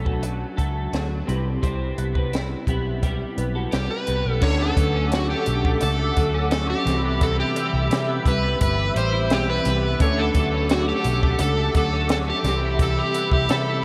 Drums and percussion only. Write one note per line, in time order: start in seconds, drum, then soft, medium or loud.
0.06 kick medium
0.23 closed hi-hat medium
0.58 kick medium
0.58 closed hi-hat medium
0.93 snare loud
0.93 closed hi-hat medium
1.29 closed hi-hat medium
1.63 kick medium
1.63 closed hi-hat medium
1.98 closed hi-hat medium
2.15 kick medium
2.33 snare loud
2.33 closed hi-hat medium
2.67 kick medium
2.67 closed hi-hat medium
3.03 kick loud
3.03 closed hi-hat medium
3.38 closed hi-hat medium
3.72 snare loud
3.72 closed hi-hat medium
4.07 closed hi-hat medium
4.41 kick loud
4.41 crash medium
4.77 kick loud
4.77 closed hi-hat medium
5.12 snare loud
5.12 closed hi-hat medium
5.46 closed hi-hat medium
5.65 kick loud
5.81 closed hi-hat loud
6.17 kick loud
6.17 closed hi-hat medium
6.51 snare loud
6.51 closed hi-hat medium
6.87 snare soft
6.87 closed hi-hat medium
7.21 kick loud
7.21 closed hi-hat loud
7.56 closed hi-hat loud
7.91 snare loud
7.91 closed hi-hat medium
8.26 kick loud
8.26 closed hi-hat medium
8.61 kick loud
8.61 closed hi-hat loud
8.96 closed hi-hat medium
9.30 snare loud
9.30 closed hi-hat medium
9.65 snare soft
9.65 closed hi-hat medium
10.00 kick loud
10.00 closed hi-hat loud
10.35 kick loud
10.35 closed hi-hat medium
10.69 snare loud
10.69 closed hi-hat medium
11.04 closed hi-hat medium
11.23 kick loud
11.39 closed hi-hat loud
11.75 kick loud
11.75 closed hi-hat medium
12.09 snare loud
12.09 closed hi-hat medium
12.44 snare soft
12.44 closed hi-hat medium
12.79 kick loud
12.79 closed hi-hat loud
13.14 closed hi-hat medium
13.31 kick medium
13.49 snare loud
13.49 closed hi-hat medium